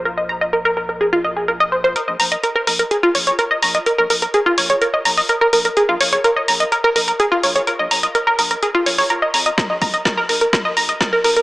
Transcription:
<<
  \new Staff \with { instrumentName = "Synth arpeggio sound" } { \time 4/4 \key bes \minor \tempo 4 = 126 bes'16 ees''16 bes''16 ees''16 bes'16 bes'16 bes'16 bes'16 aes'16 f'16 ees''16 aes'16 bes'16 ees''16 c''16 c''16 | bes'16 ees''16 bes''16 ees''16 bes'16 bes'16 bes'16 bes'16 aes'16 f'16 des''16 des''16 bes'16 ees''16 bes''16 ees''16 | bes'16 bes'16 bes'16 bes'16 aes'16 f'16 des''16 des''16 bes'16 ees''16 bes''16 ees''16 bes'16 bes'16 bes'16 bes'16 | aes'16 f'16 des''16 des''16 bes'16 ees''16 bes''16 ees''16 bes'16 bes'16 bes'16 bes'16 aes'16 f'16 des''16 des''16 |
bes'16 ees''16 bes''16 ees''16 bes'16 bes'16 bes'16 bes'16 aes'16 f'16 des''16 des''16 bes'16 ees''16 bes''16 ees''16 | bes'16 ees''16 bes''16 ees''16 bes'16 bes'16 bes'16 bes'16 bes'16 ees''16 bes''16 ees''16 bes'16 bes'16 bes'16 bes'16 | }
  \new Staff \with { instrumentName = "Analog synth bass" } { \clef bass \time 4/4 \key bes \minor bes,,1 | r16 bes,,16 bes,,16 r8. bes,,16 r8. bes,,16 r8. bes,,16 r16 | r16 bes,,16 bes,,16 r8. bes,,16 r8. bes,,16 r8. bes,,16 r16 | r16 bes,,16 bes,,16 r8. bes,,16 r8. bes,,16 r8. bes,,16 r16 |
r16 bes,,16 bes,,16 r8. bes,,16 r8. bes,,16 r8. f,16 r16 | r16 bes,,16 bes,,16 r8. bes,,16 r8. bes,,16 r8. bes,,16 r16 | }
  \new DrumStaff \with { instrumentName = "Drums" } \drummode { \time 4/4 r4 r4 r4 r4 | hh8 hho16 hh16 hh8 hho16 hh16 hh8 hho16 hh16 hh8 hho16 hh16 | hh8 hho16 hh16 hh8 hho16 hh16 hh8 hho16 hho16 hh8 hho16 hh16 | hh8 hho16 hh16 hh8 hho16 hh16 hh8 hho16 hh16 hh8 hho16 hh16 |
hh8 hho16 hh16 hh8 hho16 hh16 hh8 hho16 hho16 hh8 hho16 hh16 | <hh bd sn>8 <hho bd>16 hh16 <hh bd sn>8 hho16 hh16 <hh bd sn>8 hho16 hh16 <hh bd sn>8 hho16 hh16 | }
>>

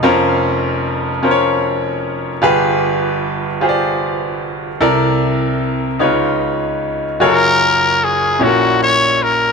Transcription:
<<
  \new Staff \with { instrumentName = "Trumpet" } { \time 6/8 \key bes \lydian \tempo 4. = 50 r2. | r2. | r2. | \key fis \major ais'4 gis'8 fis'8 cis''8 ais'8 | }
  \new Staff \with { instrumentName = "Grand piano" } { \time 6/8 \key bes \lydian <des' f' bes' c''>4. <des' f' bes' c'' des''>4. | <f' g' aes' b'>4. <f' g' aes' c'' d''>4. | <e' a' bes' d''>4. <ees' f' ces'' des''>4. | \key fis \major <eis' fis' gis' ais' cis''>4. <cis' e' fis' a' ais' cis''>4. | }
  \new Staff \with { instrumentName = "Grand piano" } { \clef bass \time 6/8 \key bes \lydian <f,, f,>2. | <g,, g,>2. | <c, c>4. <des, des>4. | \key fis \major <fis,, fis,>4. <ais,, ais,>4. | }
>>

